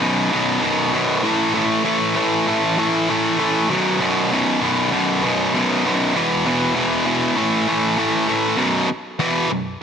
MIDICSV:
0, 0, Header, 1, 3, 480
1, 0, Start_track
1, 0, Tempo, 612870
1, 968, Time_signature, 4, 2, 24, 8
1, 7695, End_track
2, 0, Start_track
2, 0, Title_t, "Overdriven electric guitar"
2, 0, Program_c, 0, 29
2, 8, Note_on_c, 0, 42, 96
2, 9, Note_on_c, 0, 35, 91
2, 13, Note_on_c, 0, 47, 105
2, 242, Note_off_c, 0, 35, 0
2, 244, Note_off_c, 0, 42, 0
2, 244, Note_off_c, 0, 47, 0
2, 251, Note_on_c, 0, 35, 89
2, 254, Note_on_c, 0, 42, 92
2, 254, Note_on_c, 0, 47, 103
2, 473, Note_off_c, 0, 35, 0
2, 477, Note_off_c, 0, 42, 0
2, 479, Note_off_c, 0, 47, 0
2, 483, Note_on_c, 0, 35, 89
2, 486, Note_on_c, 0, 42, 93
2, 488, Note_on_c, 0, 47, 110
2, 713, Note_off_c, 0, 35, 0
2, 719, Note_off_c, 0, 42, 0
2, 723, Note_on_c, 0, 35, 84
2, 724, Note_off_c, 0, 47, 0
2, 729, Note_on_c, 0, 42, 93
2, 734, Note_on_c, 0, 47, 92
2, 952, Note_off_c, 0, 35, 0
2, 954, Note_off_c, 0, 42, 0
2, 957, Note_off_c, 0, 47, 0
2, 969, Note_on_c, 0, 45, 98
2, 973, Note_on_c, 0, 52, 116
2, 978, Note_on_c, 0, 57, 118
2, 1196, Note_off_c, 0, 45, 0
2, 1197, Note_off_c, 0, 52, 0
2, 1198, Note_off_c, 0, 57, 0
2, 1205, Note_on_c, 0, 45, 89
2, 1207, Note_on_c, 0, 52, 92
2, 1208, Note_on_c, 0, 57, 98
2, 1431, Note_off_c, 0, 45, 0
2, 1435, Note_off_c, 0, 52, 0
2, 1436, Note_off_c, 0, 57, 0
2, 1441, Note_on_c, 0, 45, 102
2, 1444, Note_on_c, 0, 52, 100
2, 1446, Note_on_c, 0, 57, 106
2, 1678, Note_off_c, 0, 45, 0
2, 1679, Note_off_c, 0, 52, 0
2, 1684, Note_off_c, 0, 57, 0
2, 1688, Note_on_c, 0, 45, 86
2, 1689, Note_on_c, 0, 52, 101
2, 1693, Note_on_c, 0, 57, 92
2, 1923, Note_off_c, 0, 45, 0
2, 1926, Note_off_c, 0, 52, 0
2, 1928, Note_off_c, 0, 57, 0
2, 1933, Note_on_c, 0, 45, 93
2, 1935, Note_on_c, 0, 52, 110
2, 1938, Note_on_c, 0, 57, 107
2, 2163, Note_off_c, 0, 45, 0
2, 2167, Note_off_c, 0, 52, 0
2, 2168, Note_off_c, 0, 57, 0
2, 2172, Note_on_c, 0, 45, 84
2, 2177, Note_on_c, 0, 52, 95
2, 2178, Note_on_c, 0, 57, 85
2, 2405, Note_off_c, 0, 45, 0
2, 2411, Note_off_c, 0, 52, 0
2, 2412, Note_off_c, 0, 57, 0
2, 2414, Note_on_c, 0, 45, 96
2, 2421, Note_on_c, 0, 52, 99
2, 2422, Note_on_c, 0, 57, 106
2, 2640, Note_off_c, 0, 45, 0
2, 2642, Note_off_c, 0, 52, 0
2, 2645, Note_off_c, 0, 57, 0
2, 2650, Note_on_c, 0, 45, 82
2, 2651, Note_on_c, 0, 52, 86
2, 2655, Note_on_c, 0, 57, 102
2, 2877, Note_off_c, 0, 45, 0
2, 2878, Note_off_c, 0, 52, 0
2, 2879, Note_off_c, 0, 57, 0
2, 2892, Note_on_c, 0, 42, 101
2, 2893, Note_on_c, 0, 35, 93
2, 2901, Note_on_c, 0, 47, 119
2, 3123, Note_off_c, 0, 35, 0
2, 3128, Note_off_c, 0, 42, 0
2, 3133, Note_on_c, 0, 35, 78
2, 3134, Note_off_c, 0, 47, 0
2, 3137, Note_on_c, 0, 42, 99
2, 3143, Note_on_c, 0, 47, 96
2, 3372, Note_off_c, 0, 35, 0
2, 3376, Note_off_c, 0, 42, 0
2, 3379, Note_off_c, 0, 47, 0
2, 3381, Note_on_c, 0, 35, 95
2, 3385, Note_on_c, 0, 42, 101
2, 3388, Note_on_c, 0, 47, 115
2, 3607, Note_off_c, 0, 42, 0
2, 3611, Note_off_c, 0, 35, 0
2, 3613, Note_off_c, 0, 47, 0
2, 3617, Note_on_c, 0, 42, 93
2, 3620, Note_on_c, 0, 35, 87
2, 3622, Note_on_c, 0, 47, 98
2, 3844, Note_off_c, 0, 42, 0
2, 3845, Note_off_c, 0, 35, 0
2, 3851, Note_off_c, 0, 47, 0
2, 3854, Note_on_c, 0, 42, 101
2, 3855, Note_on_c, 0, 35, 94
2, 3861, Note_on_c, 0, 47, 95
2, 4084, Note_off_c, 0, 35, 0
2, 4089, Note_off_c, 0, 42, 0
2, 4093, Note_off_c, 0, 47, 0
2, 4093, Note_on_c, 0, 35, 86
2, 4099, Note_on_c, 0, 42, 90
2, 4102, Note_on_c, 0, 47, 95
2, 4328, Note_off_c, 0, 42, 0
2, 4331, Note_off_c, 0, 35, 0
2, 4331, Note_off_c, 0, 47, 0
2, 4337, Note_on_c, 0, 42, 96
2, 4340, Note_on_c, 0, 35, 98
2, 4341, Note_on_c, 0, 47, 112
2, 4574, Note_off_c, 0, 35, 0
2, 4576, Note_off_c, 0, 47, 0
2, 4580, Note_off_c, 0, 42, 0
2, 4583, Note_on_c, 0, 35, 85
2, 4586, Note_on_c, 0, 47, 99
2, 4589, Note_on_c, 0, 42, 92
2, 4803, Note_off_c, 0, 35, 0
2, 4804, Note_off_c, 0, 47, 0
2, 4806, Note_off_c, 0, 42, 0
2, 4820, Note_on_c, 0, 40, 98
2, 4825, Note_on_c, 0, 47, 108
2, 4826, Note_on_c, 0, 52, 107
2, 5048, Note_off_c, 0, 40, 0
2, 5054, Note_off_c, 0, 47, 0
2, 5056, Note_off_c, 0, 52, 0
2, 5057, Note_on_c, 0, 40, 88
2, 5064, Note_on_c, 0, 47, 98
2, 5065, Note_on_c, 0, 52, 100
2, 5276, Note_off_c, 0, 40, 0
2, 5280, Note_off_c, 0, 47, 0
2, 5285, Note_off_c, 0, 52, 0
2, 5286, Note_on_c, 0, 40, 90
2, 5289, Note_on_c, 0, 47, 105
2, 5295, Note_on_c, 0, 52, 114
2, 5521, Note_off_c, 0, 40, 0
2, 5524, Note_off_c, 0, 47, 0
2, 5526, Note_off_c, 0, 52, 0
2, 5530, Note_on_c, 0, 40, 91
2, 5534, Note_on_c, 0, 47, 103
2, 5535, Note_on_c, 0, 52, 105
2, 5756, Note_off_c, 0, 40, 0
2, 5758, Note_off_c, 0, 47, 0
2, 5758, Note_off_c, 0, 52, 0
2, 5773, Note_on_c, 0, 45, 95
2, 5775, Note_on_c, 0, 52, 97
2, 5776, Note_on_c, 0, 57, 99
2, 6004, Note_off_c, 0, 45, 0
2, 6011, Note_off_c, 0, 52, 0
2, 6013, Note_on_c, 0, 45, 96
2, 6017, Note_off_c, 0, 57, 0
2, 6020, Note_on_c, 0, 52, 96
2, 6026, Note_on_c, 0, 57, 87
2, 6240, Note_off_c, 0, 45, 0
2, 6240, Note_off_c, 0, 52, 0
2, 6243, Note_off_c, 0, 57, 0
2, 6249, Note_on_c, 0, 52, 90
2, 6250, Note_on_c, 0, 45, 94
2, 6252, Note_on_c, 0, 57, 97
2, 6477, Note_off_c, 0, 45, 0
2, 6481, Note_off_c, 0, 52, 0
2, 6481, Note_off_c, 0, 57, 0
2, 6486, Note_on_c, 0, 45, 83
2, 6491, Note_on_c, 0, 52, 90
2, 6491, Note_on_c, 0, 57, 96
2, 6710, Note_off_c, 0, 45, 0
2, 6713, Note_on_c, 0, 35, 104
2, 6714, Note_off_c, 0, 52, 0
2, 6715, Note_off_c, 0, 57, 0
2, 6717, Note_on_c, 0, 42, 106
2, 6724, Note_on_c, 0, 47, 108
2, 6953, Note_off_c, 0, 35, 0
2, 6955, Note_off_c, 0, 42, 0
2, 6959, Note_off_c, 0, 47, 0
2, 7198, Note_on_c, 0, 40, 82
2, 7203, Note_on_c, 0, 47, 100
2, 7210, Note_on_c, 0, 52, 96
2, 7435, Note_off_c, 0, 40, 0
2, 7438, Note_off_c, 0, 47, 0
2, 7441, Note_off_c, 0, 52, 0
2, 7444, Note_on_c, 0, 42, 77
2, 7445, Note_on_c, 0, 35, 64
2, 7637, Note_off_c, 0, 42, 0
2, 7638, Note_off_c, 0, 35, 0
2, 7695, End_track
3, 0, Start_track
3, 0, Title_t, "Muted overdriven electric guitar strokes"
3, 6961, Note_on_c, 9, 29, 58
3, 7040, Note_off_c, 9, 29, 0
3, 7695, End_track
0, 0, End_of_file